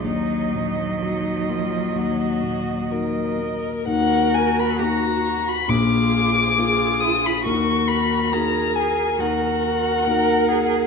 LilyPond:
<<
  \new Staff \with { instrumentName = "Violin" } { \time 4/4 \key ees \minor \tempo 4 = 68 ees'4 ees'8 f'8 ges'4 bes'4 | ges''8 aes''16 ces'''16 bes''8. ces'''16 d'''4. ees'''16 ces'''16 | des'''8 ces'''8 bes''8 aes''8 ges''2 | }
  \new Staff \with { instrumentName = "Viola" } { \time 4/4 \key ees \minor ees''1 | ges'2 aes'2 | bes'1 | }
  \new Staff \with { instrumentName = "Cello" } { \time 4/4 \key ees \minor ges2.~ ges8 r8 | bes'4 ges'4 f'4 f'4 | ges'4 aes'4 ges'4 bes'8 aes'8 | }
  \new Staff \with { instrumentName = "Grand piano" } { \time 4/4 \key ees \minor ees,8 bes,8 <ees' ges'>8 bes8 ees,8 bes,8 <ees' ges'>8 bes8 | <ees, ees>4 <bes ees' ges'>4 <bes,, bes,>4 <bes f' aes'>4 | <ees, ees>4 <bes ees' ges'>4 <ees, ees>4 <bes ees' ges'>4 | }
>>